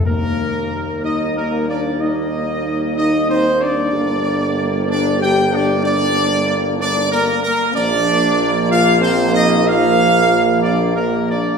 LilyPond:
<<
  \new Staff \with { instrumentName = "Trumpet section" } { \time 4/4 \key ees \lydian \tempo 4 = 62 bes'4 \tuplet 3/2 { ees''8 bes'8 d''8 } ees''4 \tuplet 3/2 { ees''8 c''8 d''8~ } | d''4 \tuplet 3/2 { d''8 g''8 d''8 } d''4 \tuplet 3/2 { d''8 bes'8 bes'8 } | d''4 \tuplet 3/2 { f''8 c''8 ees''8 } f''4 \tuplet 3/2 { d''8 bes'8 d''8 } | }
  \new Staff \with { instrumentName = "French horn section" } { \time 4/4 \key ees \lydian bes4 \tuplet 3/2 { ees'8 bes8 d'8 } ees'4 \tuplet 3/2 { ees'8 c'8 d'8~ } | d'4 \tuplet 3/2 { d'8 g'8 d'8 } d'4 \tuplet 3/2 { d'8 bes8 bes8 } | d'4 \tuplet 3/2 { f'8 c'8 ees'8 } f'4 \tuplet 3/2 { d'8 bes8 d'8 } | }
  \new Staff \with { instrumentName = "Trombone section" } { \clef bass \time 4/4 \key ees \lydian <g bes>1 | <g bes>1 | <f bes>1 | }
  \new Staff \with { instrumentName = "Tuba" } { \clef bass \time 4/4 \key ees \lydian ees,1 | g,,2.~ g,,8 r8 | bes,,1 | }
>>